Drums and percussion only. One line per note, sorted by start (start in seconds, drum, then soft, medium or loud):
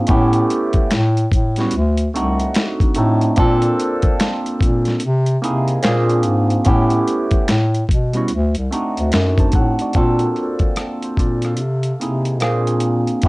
0.07 kick loud
0.07 closed hi-hat medium
0.33 closed hi-hat medium
0.50 closed hi-hat medium
0.73 kick medium
0.73 closed hi-hat soft
0.91 finger snap medium
0.91 snare loud
0.91 closed hi-hat medium
1.17 closed hi-hat soft
1.32 kick medium
1.32 closed hi-hat medium
1.56 snare soft
1.56 closed hi-hat soft
1.71 closed hi-hat medium
1.97 closed hi-hat medium
2.15 closed hi-hat medium
2.39 closed hi-hat soft
2.54 finger snap medium
2.54 snare loud
2.54 closed hi-hat medium
2.80 kick loud
2.80 closed hi-hat soft
2.95 closed hi-hat medium
3.22 closed hi-hat soft
3.36 kick loud
3.36 closed hi-hat medium
3.62 closed hi-hat medium
3.80 closed hi-hat medium
4.02 kick medium
4.02 closed hi-hat soft
4.20 finger snap medium
4.20 snare loud
4.20 closed hi-hat loud
4.46 closed hi-hat medium
4.61 kick medium
4.61 closed hi-hat medium
4.85 snare soft
4.85 closed hi-hat soft
5.00 closed hi-hat medium
5.26 closed hi-hat medium
5.44 closed hi-hat medium
5.68 closed hi-hat soft
5.83 finger snap medium
5.83 snare loud
5.83 closed hi-hat medium
6.10 closed hi-hat soft
6.23 closed hi-hat medium
6.50 closed hi-hat soft
6.65 kick loud
6.65 closed hi-hat medium
6.90 closed hi-hat medium
7.08 closed hi-hat medium
7.31 kick medium
7.31 closed hi-hat soft
7.48 finger snap medium
7.48 snare loud
7.48 closed hi-hat medium
7.75 closed hi-hat soft
7.89 kick medium
7.89 closed hi-hat medium
8.14 closed hi-hat soft
8.28 closed hi-hat medium
8.55 closed hi-hat medium
8.73 closed hi-hat medium
8.97 closed hi-hat soft
9.12 finger snap medium
9.12 snare loud
9.12 closed hi-hat medium
9.38 kick medium
9.38 closed hi-hat soft
9.52 kick loud
9.52 closed hi-hat medium
9.79 closed hi-hat soft
9.93 kick medium
9.93 closed hi-hat medium
10.19 closed hi-hat soft
10.36 closed hi-hat medium
10.59 kick medium
10.59 closed hi-hat soft
10.76 cross-stick loud
10.76 closed hi-hat medium
11.03 closed hi-hat soft
11.17 kick medium
11.17 closed hi-hat medium
11.42 cross-stick soft
11.42 closed hi-hat soft
11.57 closed hi-hat medium
11.83 closed hi-hat soft
12.01 closed hi-hat medium
12.25 closed hi-hat soft
12.40 cross-stick loud
12.40 closed hi-hat medium
12.67 closed hi-hat soft
12.80 closed hi-hat medium
13.07 closed hi-hat soft
13.22 kick loud
13.22 closed hi-hat medium